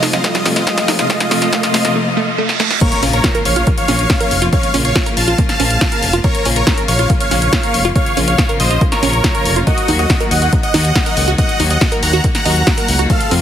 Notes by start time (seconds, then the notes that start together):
Already playing: riser
0.03 F2 D#4, snare, open hi-hat
0.13 C3 F3 A3 F4 D#5, snare, closed hi-hat
0.24 C3 F3 A3 F4 D#5, kick, snare, closed hi-hat
0.35 snare, closed hi-hat
0.45 F2 C3 F3 A3 D#4 F4, snare, open hi-hat
0.56 F4 D#5, snare, closed hi-hat
0.67 C3 F3 A3 F4 D#5, kick, snare, closed hi-hat
0.77 C3 F3 A3 F4, snare, closed hi-hat
0.88 D#2 D#4, snare, open hi-hat
0.99 C3 F3 A3 F4 D#5, snare, closed hi-hat
1.10 C3 F3 A3 F4 D#5, kick, snare, closed hi-hat
1.20 snare, closed hi-hat
1.31 F2 C3 F3 A3 F4 D#5, snare, open hi-hat
1.42 snare, closed hi-hat
1.53 C3 F3 A3 F4 D#5, kick, snare, closed hi-hat
1.63 C3 F3 A3 F4, snare, closed hi-hat
1.74 F2 A3 F4 D#5, snare, open hi-hat
1.85 C3 F3 A3 F4, snare, closed hi-hat
1.95 A3, reverse cymbal
2.17 A3
2.38 A3
2.49 snare
2.60 A3, snare
2.70 snare
2.81 C#3 F3 A#3 F4 A#4 C#5, kick, closed hi-hat, crash, impact
2.92 closed hi-hat
3.03 A#1 C#3 F3 A#3 C#4 F4, open hi-hat
3.13 A#4 C#5, closed hi-hat
3.24 C#3 F3 A#3 F4, kick, snare, closed hi-hat
3.35 C#3 F3 A#3 F4 A#4, closed hi-hat
3.45 A#1 C#5 F5, open hi-hat
3.56 C#3 F3 A#3 F4, closed hi-hat
3.67 C#3 F3 A#3 F4, kick, closed hi-hat
3.78 C#5 F5, closed hi-hat
3.88 A#1 C#3 F3 A#3 C#4 F4, snare, open hi-hat
3.99 closed hi-hat
4.10 C#3 F3 A#3 F4, kick, snare, closed hi-hat
4.20 C#3 F3 A#3 F4 A#4, closed hi-hat
4.31 F1, open hi-hat
4.42 C#3 F3 A#3 F4, closed hi-hat
4.53 C#3 F3 A#3 F4 C#5 F5, kick, closed hi-hat
4.63 closed hi-hat
4.74 A#1 C#3 F3 A#3 C#4 F4, open hi-hat
4.85 C#5 F5, closed hi-hat
4.95 C#3 F3 A#3 F4, kick, snare, closed hi-hat
5.06 C#3 F3 A#3 F4 A#4, closed hi-hat
5.17 A#1 F5 A5, open hi-hat
5.28 C#3 F3 A#3 F4, closed hi-hat
5.38 C#3 F3 A#3 F4, kick, closed hi-hat
5.49 F5 A5, snare, closed hi-hat
5.60 A#1 C#3 F3 A#3 C#4 F4, open hi-hat
5.70 closed hi-hat
5.81 C#3 F3 A#3 F4, kick, snare, closed hi-hat
5.92 C#3 F3 A#3 F4 A#4, closed hi-hat
6.03 F1, open hi-hat
6.13 C#3 F3 A#3 F4, closed hi-hat
6.24 C#3 F3 A#3 F4 A#4 C#5, kick, closed hi-hat
6.35 closed hi-hat
6.45 A#1 C#3 F3 A#3 C#4 F4, open hi-hat
6.56 A#4 C#5, closed hi-hat
6.67 C#3 F3 A#3 F4, kick, snare, closed hi-hat
6.78 C#3 F3 A#3 F4 A#4, closed hi-hat
6.88 A#1 C#5 F5, open hi-hat
6.99 C#3 F3 A#3 F4, closed hi-hat
7.10 C#3 F3 A#3 F4, kick, closed hi-hat
7.20 C#5 F5, closed hi-hat
7.31 A#1 C#3 F3 A#3 C#4 F4, snare, open hi-hat
7.42 closed hi-hat
7.53 C#3 F3 A#3 F4, kick, snare, closed hi-hat
7.63 C#3 F3 A#3 F4 A#4, closed hi-hat
7.74 F1, open hi-hat
7.85 C#3 F3 A#3 F4, closed hi-hat
7.95 C#3 F3 A#3 F4 C#5 F5, kick, closed hi-hat
8.06 closed hi-hat
8.17 A#1 C#3 F3 A#3 C#4 F4, open hi-hat
8.28 C#5 F5, closed hi-hat
8.38 C#3 F3 A#3 F4, kick, snare, closed hi-hat
8.49 C#3 F3 A#3 F4 A#4, closed hi-hat
8.60 A#1 C5 D#5, open hi-hat
8.70 C#3 F3 A#3 F4, closed hi-hat
8.81 C#3 F3 A#3 F4, kick, closed hi-hat
8.92 A#4 C#5, snare, closed hi-hat
9.03 A#1 C#3 F3 A#3 C#4 F4, open hi-hat
9.13 closed hi-hat
9.24 C#3 F3 A#3 F4, kick, snare, closed hi-hat
9.35 C#3 F3 A#3 F4 A#4, closed hi-hat
9.45 F1, open hi-hat
9.56 C#3 F3 A#3 F4, closed hi-hat
9.67 D#3 F#3 A#3 F#4 D#5, kick, closed hi-hat
9.78 closed hi-hat
9.88 D#2 D#3 F#3 A#3 D#4 F#4, open hi-hat
9.99 F#4 D#5, closed hi-hat
10.10 D#3 F#3 A#3 F#4, kick, snare, closed hi-hat
10.20 D#3 F#3 A#3 F#4 A#4, closed hi-hat
10.31 D#2 D#5 F#5, open hi-hat
10.42 D#3 F#3 A#3 F#4, closed hi-hat
10.53 D#3 F#3 A#3 F#4, kick, closed hi-hat
10.63 D#5 F#5, closed hi-hat
10.74 D#2 D#3 F#3 A#3 D#4 F#4, snare, open hi-hat
10.85 closed hi-hat
10.95 D#3 F#3 A#3 F#4, kick, snare, closed hi-hat
11.06 D#3 F#3 A#3 F#4 A#4, closed hi-hat
11.17 C#2, open hi-hat
11.28 D#3 F#3 A#3 F#4, closed hi-hat
11.38 D#3 F#3 A#3 F#4 D#5 F#5, kick, closed hi-hat
11.49 closed hi-hat
11.60 D#2 D#3 F#3 A#3 D#4 F#4, open hi-hat
11.70 D#5 F#5, closed hi-hat
11.81 D#3 F#3 A#3 F#4, kick, snare, closed hi-hat
11.92 D#3 F#3 A#3 F#4 A#4, closed hi-hat
12.03 D#2 F#5 A#5, open hi-hat
12.13 D#3 F#3 A#3 F#4, closed hi-hat
12.24 D#3 F#3 A#3 F#4, kick, closed hi-hat
12.35 F#5 A#5, snare, closed hi-hat
12.45 D#2 D#3 F#3 A#3 D#4 F#4, open hi-hat
12.56 closed hi-hat
12.67 D#3 F#3 A#3 F#4, kick, snare, closed hi-hat
12.78 D#3 F#3 A#3 F#4 A#4, closed hi-hat
12.88 C#2, open hi-hat
12.99 D#3 F#3 A#3 F#4, closed hi-hat
13.10 C3 F3 A3 F4 A4 F5, kick, closed hi-hat
13.21 closed hi-hat
13.31 F2 C3 F3 A3 C4 F4, open hi-hat